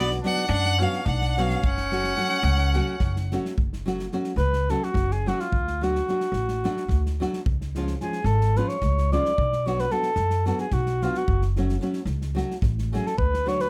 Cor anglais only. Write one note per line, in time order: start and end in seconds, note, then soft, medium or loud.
0.22 0.47 D4 medium
0.47 0.80 D4 loud
0.79 1.08 C#4 medium
1.06 1.40 D4 medium
1.39 1.65 C#4 medium
1.65 3.33 C#4 loud
4.38 4.71 B4 loud
4.70 4.86 A4 medium
4.84 5.14 F#4 medium
5.12 5.30 G#4 medium
5.28 5.42 F#4 medium
5.41 5.85 F4 medium
5.83 7.21 F#4 medium
8.02 8.28 G#4 medium
8.26 8.59 A4 loud
8.57 8.70 B4 medium
8.68 9.12 C#5 medium
9.13 9.68 D5 loud
9.67 9.81 C#5 medium
9.80 9.93 B4 loud
9.92 10.46 A4 medium
10.47 10.59 A4 medium
10.60 10.75 G#4 medium
10.73 11.04 F#4 medium
11.03 11.19 F4 medium
11.18 11.44 F#4 medium
12.94 13.09 G#4 medium
13.07 13.17 A4 medium
13.18 13.50 B4 medium
13.48 13.62 C#5 loud
13.61 13.70 B4 loud